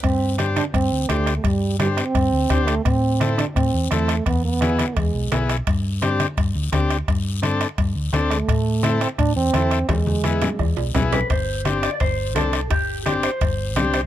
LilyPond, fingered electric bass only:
\new Staff \with { instrumentName = "Fingered electric bass" } { \clef bass \time 4/4 \key g \mixolydian \tempo 4 = 170 g,2 g,8 d,8 d,4 | g,2 g,8 d,8 d,4 | a,2 a,8 e,8 e,4 | e,2 e,8 b,,8 b,,4 |
g,2 g,8 d,8 d,4 | g,2 g,8 d,8 d,4 | a,2 a,8 e,8 e,4 | e,2 e,8 b,,8 b,,4 |
g,,2 g,,4 c,4 | g,,2 g,,4 c,4 | }